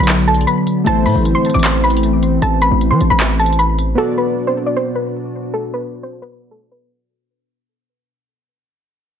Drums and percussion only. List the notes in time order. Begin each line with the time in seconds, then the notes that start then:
0.04 closed hi-hat
0.08 clap, closed hi-hat
0.28 closed hi-hat
0.34 closed hi-hat
0.41 closed hi-hat
0.47 closed hi-hat
0.67 closed hi-hat
0.86 closed hi-hat
1.06 open hi-hat
1.25 closed hi-hat
1.45 closed hi-hat
1.50 closed hi-hat
1.54 closed hi-hat
1.59 closed hi-hat
1.64 clap, closed hi-hat
1.84 closed hi-hat
1.90 closed hi-hat
1.97 closed hi-hat
2.03 closed hi-hat
2.23 closed hi-hat
2.42 closed hi-hat
2.62 closed hi-hat
2.81 closed hi-hat
3.01 closed hi-hat
3.20 clap, closed hi-hat
3.40 closed hi-hat
3.46 closed hi-hat
3.53 closed hi-hat
3.59 closed hi-hat
3.79 closed hi-hat